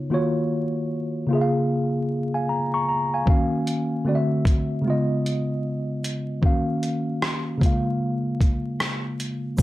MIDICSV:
0, 0, Header, 1, 3, 480
1, 0, Start_track
1, 0, Tempo, 789474
1, 70, Time_signature, 4, 2, 24, 8
1, 5851, End_track
2, 0, Start_track
2, 0, Title_t, "Tine electric piano"
2, 0, Program_c, 0, 4
2, 0, Control_c, 0, 64, 127
2, 0, Note_on_c, 0, 49, 68
2, 0, Note_on_c, 0, 59, 64
2, 0, Note_on_c, 0, 63, 64
2, 0, Note_on_c, 0, 65, 64
2, 0, Note_on_c, 0, 73, 73
2, 62, Note_on_c, 0, 51, 67
2, 65, Note_off_c, 0, 73, 0
2, 68, Note_on_c, 0, 58, 65
2, 73, Note_off_c, 0, 65, 0
2, 73, Note_on_c, 0, 65, 65
2, 77, Control_c, 0, 64, 0
2, 81, Note_off_c, 0, 49, 0
2, 81, Note_on_c, 0, 66, 64
2, 82, Note_off_c, 0, 59, 0
2, 82, Note_off_c, 0, 63, 0
2, 86, Note_on_c, 0, 73, 77
2, 187, Control_c, 0, 64, 127
2, 771, Note_on_c, 0, 49, 69
2, 775, Note_off_c, 0, 58, 0
2, 782, Note_on_c, 0, 58, 61
2, 786, Note_off_c, 0, 51, 0
2, 788, Note_off_c, 0, 65, 0
2, 795, Note_off_c, 0, 66, 0
2, 795, Note_on_c, 0, 65, 62
2, 798, Note_off_c, 0, 73, 0
2, 798, Control_c, 0, 64, 0
2, 808, Note_on_c, 0, 68, 67
2, 821, Note_on_c, 0, 76, 59
2, 855, Note_off_c, 0, 76, 0
2, 860, Note_on_c, 0, 77, 73
2, 899, Control_c, 0, 64, 127
2, 1296, Note_off_c, 0, 77, 0
2, 1425, Note_on_c, 0, 80, 55
2, 1428, Note_on_c, 0, 77, 48
2, 1507, Note_off_c, 0, 80, 0
2, 1509, Note_off_c, 0, 77, 0
2, 1516, Note_on_c, 0, 82, 65
2, 1656, Note_off_c, 0, 82, 0
2, 1666, Note_on_c, 0, 85, 66
2, 1668, Note_on_c, 0, 82, 58
2, 1748, Note_off_c, 0, 85, 0
2, 1749, Note_off_c, 0, 82, 0
2, 1756, Note_on_c, 0, 82, 61
2, 1896, Note_off_c, 0, 82, 0
2, 1909, Note_on_c, 0, 80, 59
2, 1912, Note_on_c, 0, 77, 48
2, 1956, Note_off_c, 0, 49, 0
2, 1962, Note_off_c, 0, 58, 0
2, 1969, Note_off_c, 0, 65, 0
2, 1975, Note_off_c, 0, 68, 0
2, 1981, Note_on_c, 0, 51, 74
2, 1987, Note_on_c, 0, 58, 66
2, 1992, Note_on_c, 0, 61, 67
2, 1996, Control_c, 0, 64, 0
2, 1997, Note_off_c, 0, 77, 0
2, 2000, Note_on_c, 0, 66, 66
2, 2004, Note_on_c, 0, 77, 80
2, 2118, Control_c, 0, 64, 127
2, 2133, Note_off_c, 0, 80, 0
2, 2461, Note_on_c, 0, 50, 72
2, 2465, Note_off_c, 0, 51, 0
2, 2468, Note_off_c, 0, 58, 0
2, 2468, Note_on_c, 0, 57, 65
2, 2471, Note_off_c, 0, 61, 0
2, 2471, Note_off_c, 0, 66, 0
2, 2473, Note_on_c, 0, 60, 66
2, 2477, Note_off_c, 0, 77, 0
2, 2477, Control_c, 0, 64, 0
2, 2479, Note_on_c, 0, 66, 63
2, 2486, Note_on_c, 0, 74, 63
2, 2525, Note_on_c, 0, 76, 78
2, 2527, Note_off_c, 0, 74, 0
2, 2589, Control_c, 0, 64, 127
2, 2928, Note_on_c, 0, 49, 66
2, 2942, Note_on_c, 0, 56, 63
2, 2945, Note_off_c, 0, 50, 0
2, 2949, Note_off_c, 0, 57, 0
2, 2951, Note_off_c, 0, 60, 0
2, 2953, Note_on_c, 0, 59, 67
2, 2954, Note_off_c, 0, 66, 0
2, 2957, Control_c, 0, 64, 0
2, 2965, Note_on_c, 0, 65, 65
2, 2977, Note_off_c, 0, 76, 0
2, 2979, Note_on_c, 0, 75, 76
2, 3062, Control_c, 0, 64, 127
2, 3880, Note_off_c, 0, 49, 0
2, 3886, Note_off_c, 0, 56, 0
2, 3892, Note_off_c, 0, 59, 0
2, 3898, Note_off_c, 0, 65, 0
2, 3902, Note_on_c, 0, 51, 75
2, 3905, Note_off_c, 0, 75, 0
2, 3907, Note_on_c, 0, 58, 69
2, 3912, Note_on_c, 0, 61, 67
2, 3917, Control_c, 0, 64, 0
2, 3919, Note_on_c, 0, 66, 64
2, 3926, Note_on_c, 0, 77, 82
2, 4007, Control_c, 0, 64, 127
2, 4606, Note_on_c, 0, 49, 72
2, 4619, Note_on_c, 0, 56, 68
2, 4625, Note_off_c, 0, 58, 0
2, 4626, Note_off_c, 0, 51, 0
2, 4631, Note_off_c, 0, 61, 0
2, 4632, Note_on_c, 0, 58, 67
2, 4634, Note_off_c, 0, 66, 0
2, 4638, Note_off_c, 0, 77, 0
2, 4638, Control_c, 0, 64, 0
2, 4644, Note_on_c, 0, 65, 61
2, 4657, Note_on_c, 0, 77, 77
2, 4761, Control_c, 0, 64, 127
2, 5794, Note_off_c, 0, 49, 0
2, 5800, Note_off_c, 0, 56, 0
2, 5807, Note_off_c, 0, 58, 0
2, 5813, Note_off_c, 0, 65, 0
2, 5819, Note_off_c, 0, 77, 0
2, 5820, Note_on_c, 0, 51, 63
2, 5825, Note_on_c, 0, 58, 61
2, 5836, Control_c, 0, 64, 0
2, 5851, Note_off_c, 0, 51, 0
2, 5851, Note_off_c, 0, 58, 0
2, 5851, End_track
3, 0, Start_track
3, 0, Title_t, "Drums"
3, 1989, Note_on_c, 9, 36, 98
3, 2049, Note_off_c, 9, 36, 0
3, 2232, Note_on_c, 9, 42, 65
3, 2293, Note_off_c, 9, 42, 0
3, 2707, Note_on_c, 9, 36, 80
3, 2717, Note_on_c, 9, 42, 48
3, 2768, Note_off_c, 9, 36, 0
3, 2778, Note_off_c, 9, 42, 0
3, 3199, Note_on_c, 9, 42, 55
3, 3260, Note_off_c, 9, 42, 0
3, 3675, Note_on_c, 9, 42, 66
3, 3735, Note_off_c, 9, 42, 0
3, 3907, Note_on_c, 9, 36, 92
3, 3968, Note_off_c, 9, 36, 0
3, 4152, Note_on_c, 9, 42, 63
3, 4213, Note_off_c, 9, 42, 0
3, 4392, Note_on_c, 9, 37, 105
3, 4453, Note_off_c, 9, 37, 0
3, 4629, Note_on_c, 9, 36, 96
3, 4640, Note_on_c, 9, 42, 49
3, 4690, Note_off_c, 9, 36, 0
3, 4701, Note_off_c, 9, 42, 0
3, 5111, Note_on_c, 9, 36, 79
3, 5116, Note_on_c, 9, 42, 55
3, 5172, Note_off_c, 9, 36, 0
3, 5177, Note_off_c, 9, 42, 0
3, 5352, Note_on_c, 9, 37, 103
3, 5413, Note_off_c, 9, 37, 0
3, 5593, Note_on_c, 9, 42, 66
3, 5653, Note_off_c, 9, 42, 0
3, 5824, Note_on_c, 9, 82, 70
3, 5827, Note_on_c, 9, 36, 113
3, 5851, Note_off_c, 9, 36, 0
3, 5851, Note_off_c, 9, 82, 0
3, 5851, End_track
0, 0, End_of_file